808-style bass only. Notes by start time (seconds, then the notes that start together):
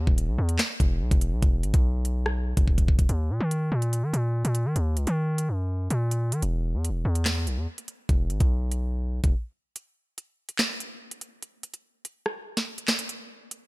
0.07 D#1
0.28 B1
0.38 E2
0.80 E1
1.01 B1
1.11 E1
1.32 B1
1.43 E1
1.63 G#1
1.74 B1
2.57 E1
3.09 D#2
3.30 A#2
3.40 D#3
3.72 A#2
4.03 D#3
4.13 A#2
4.45 A#2
4.65 D#3
4.76 D#2
4.97 C#2
5.07 D#3
5.49 F#2
5.90 A#2
6.32 D#3
6.43 E1
6.74 E2
6.89 E1
7.05 E2
7.47 B1
7.57 E2
8.09 E1
8.30 G#1
8.41 B1
9.24 E1